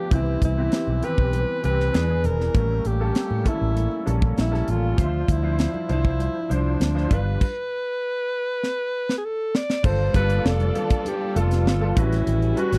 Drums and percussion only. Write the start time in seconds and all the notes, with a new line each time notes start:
0.11 kick, closed hi-hat, muted conga, low conga
0.26 muted conga
0.41 kick, closed hi-hat, high conga
0.72 snare, closed hi-hat, muted conga
0.87 high conga
1.03 closed hi-hat, low conga
1.18 kick
1.33 closed hi-hat, muted conga, high conga
1.49 muted conga
1.63 closed hi-hat, high conga
1.80 snare
1.93 snare, closed hi-hat, muted conga, high conga
2.24 closed hi-hat, low conga
2.40 snare
2.55 kick, closed hi-hat, muted conga, low conga
2.84 closed hi-hat, high conga
3.15 snare, closed hi-hat, muted conga
3.31 high conga
3.46 kick, closed hi-hat, low conga
3.76 closed hi-hat, high conga
3.91 muted conga
4.07 closed hi-hat, high conga
4.22 kick
4.37 snare, closed hi-hat, muted conga, high conga
4.54 snare
4.68 closed hi-hat, low conga
4.98 kick, closed hi-hat, muted conga, low conga
5.14 muted conga
5.28 kick, closed hi-hat, high conga
5.59 snare, closed hi-hat
5.74 muted conga, high conga
5.89 closed hi-hat, low conga
6.05 kick
6.19 closed hi-hat, muted conga, high conga
6.35 muted conga
6.50 closed hi-hat, high conga
6.80 snare, closed hi-hat, muted conga, high conga
6.95 snare, muted conga
7.11 kick, closed hi-hat, low conga
7.41 kick, crash
8.63 snare
9.09 snare
9.55 snare
9.70 snare
9.84 kick, crash, low conga
10.13 kick, closed hi-hat, high conga
10.30 closed hi-hat
10.45 snare, muted conga
10.60 closed hi-hat, high conga
10.75 closed hi-hat, low conga
10.90 kick, closed hi-hat
11.05 closed hi-hat, high conga
11.21 muted conga
11.36 closed hi-hat, high conga
11.51 snare, closed hi-hat
11.66 snare, muted conga, high conga
11.81 muted conga
11.96 kick, closed hi-hat, high conga, low conga
12.13 snare, closed hi-hat
12.27 closed hi-hat, low conga
12.42 closed hi-hat
12.56 closed hi-hat, high conga
12.73 snare, closed hi-hat